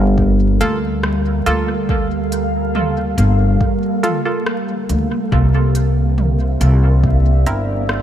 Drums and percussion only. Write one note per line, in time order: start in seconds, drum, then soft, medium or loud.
0.18 kick loud
0.61 closed hi-hat soft
1.03 cross-stick medium
1.46 closed hi-hat medium
1.89 kick loud
2.32 closed hi-hat medium
2.75 mid tom medium
3.18 closed hi-hat soft
3.61 kick medium
4.04 closed hi-hat medium
4.04 mid tom medium
4.46 cross-stick medium
4.89 closed hi-hat medium
4.89 mid tom medium
5.32 kick loud
5.75 closed hi-hat medium
6.18 mid tom medium
6.61 closed hi-hat medium
7.04 kick loud
7.46 closed hi-hat medium
7.89 cross-stick medium